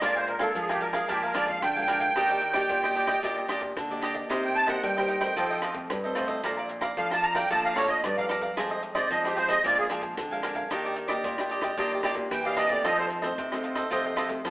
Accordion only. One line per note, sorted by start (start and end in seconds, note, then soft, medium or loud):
0.02 0.15 D5 medium
0.17 0.29 C5 medium
0.28 0.41 A#4 medium
0.41 0.55 A4 medium
0.56 0.69 G#4 medium
0.69 0.82 G4 medium
0.81 0.95 A#4 medium
0.94 1.08 G#4 medium
1.09 1.22 G4 medium
1.24 1.36 A#4 medium
1.35 1.48 D5 medium
1.48 1.61 F5 medium
1.62 3.19 G5 medium
4.45 4.57 G5 medium
4.55 4.69 A5 loud
4.68 4.82 F#5 medium
4.83 5.60 G5 medium
6.98 7.10 F5 medium
7.12 7.25 A5 medium
7.23 7.36 A#5 loud
7.35 7.49 G5 medium
7.51 7.64 A5 medium
7.65 7.77 F5 medium
7.76 7.90 C#5 medium
7.89 8.03 D#5 medium
8.04 8.17 D5 medium
8.17 8.25 F5 medium
8.95 9.09 D5 medium
9.11 9.24 D#5 medium
9.25 9.38 G4 medium
9.37 9.50 C5 medium
9.49 9.63 D#5 loud
9.65 9.78 D5 medium
9.79 9.86 G#4 medium
12.31 12.44 G5 medium
12.46 12.58 F5 medium
12.56 12.70 D#5 medium
12.69 12.83 D5 medium
12.84 12.97 D#5 loud
12.97 13.06 C5 medium